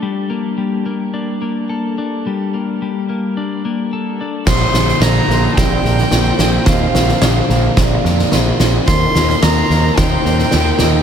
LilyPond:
<<
  \new Staff \with { instrumentName = "Violin" } { \time 4/4 \key bes \major \tempo 4 = 109 r1 | r1 | c'''4 bes''4 g''2 | f''2 r2 |
c'''4 bes''4 g''2 | }
  \new Staff \with { instrumentName = "Vibraphone" } { \time 4/4 \key bes \major r1 | r1 | c''4 c''4 d''4 c''4 | c''4 r4 d''4 c''4 |
bes'4 bes'4 r4 bes'4 | }
  \new Staff \with { instrumentName = "Clean electric guitar" } { \time 4/4 \key bes \major g8 bes8 g8 bes8 d'8 bes8 a'8 d'8 | g8 bes8 g8 bes8 d'8 bes8 a'8 d'8 | bes,8 d8 d8 bes8 c'8 bes8 f'8 c'8 | bes,8 d8 d8 bes8 c'8 bes8 f'8 c'8 |
ees8 bes8 ees8 bes8 ees'8 bes8 g'8 ees'8 | }
  \new Staff \with { instrumentName = "Picked electric bass" } { \clef bass \time 4/4 \key bes \major r1 | r1 | bes,,8 bes,,8 bes,,8 bes,,8 bes,,8 bes,,8 bes,,8 bes,,8 | ees,8 bes,,8 bes,,8 bes,,8 bes,,8 f,8 bes,,8 bes,,8 |
ees,8 ees,8 ees,8 ees,8 ees,8 ees,8 ees,8 ees,8 | }
  \new DrumStaff \with { instrumentName = "Drums" } \drummode { \time 4/4 r4 r4 r4 r4 | r4 r4 r4 r4 | <cymc bd sn>8 sn16 sn16 sn8 sn8 <bd sn>8 sn16 sn16 sn8 sn8 | <bd sn>8 sn16 sn16 sn8 sn8 <bd sn>8 sn16 sn16 sn8 sn8 |
<bd sn>8 sn16 sn16 sn8 sn8 <bd sn>8 sn16 sn16 sn8 sn8 | }
>>